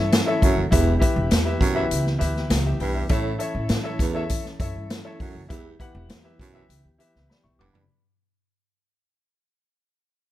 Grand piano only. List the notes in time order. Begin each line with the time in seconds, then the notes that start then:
Already playing: E4 A4 C#5 E5
0.26 E4 A4 C#5 E5
0.71 E4 G4 B4 E5
0.99 E4 G4 B4 E5
1.45 E4 G4 B4 E5
1.74 E4 G4 B4 E5
2.18 E4 G4 B4 E5
2.66 G4 E5
2.81 B4 G5
2.95 G4 E5
3.09 E4 A4 C#5 E5
3.39 E4 A4 C#5 E5
3.83 E4 A4 C#5 E5
4.14 E4 A4 C#5 E5
4.59 E4 A4 C#5 E5
5.04 E4 A4 C#5 E5
5.48 E4 G4 B4 E5
5.79 E4 G4 B4 F#5
6.24 E4 G4 B4 E5
6.53 E4 G4 B4 E5
6.98 E4 G4 B4 E5
7.30 D5 B5
7.44 E5 C#6
7.59 F#5 D6
7.73 D5 B5